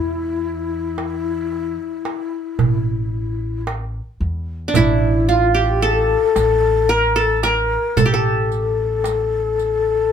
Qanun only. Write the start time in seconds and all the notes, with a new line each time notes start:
Already playing: E4
4.68 D4
4.76 E4
5.29 F4
5.54 G4
5.82 A4
6.89 A#4
7.16 A4
7.43 A#4
7.97 A4
8.06 G4
8.14 A4